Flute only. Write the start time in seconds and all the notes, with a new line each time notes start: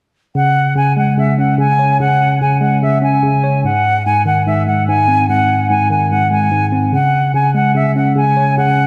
0.35 F#5
0.76 G#5
0.97 F#5
1.18 E5
1.38 F#5
1.59 G#5
2.00 F#5
2.41 G#5
2.61 F#5
2.82 E5
3.03 G#5
3.64 F#5
4.05 G#5
4.26 F#5
4.46 E5
4.67 F#5
4.87 G#5
5.28 F#5
5.70 G#5
5.90 G#5
6.10 F#5
6.31 G#5
6.93 F#5
7.34 G#5
7.55 F#5
7.75 E5
7.96 F#5
8.16 G#5
8.57 F#5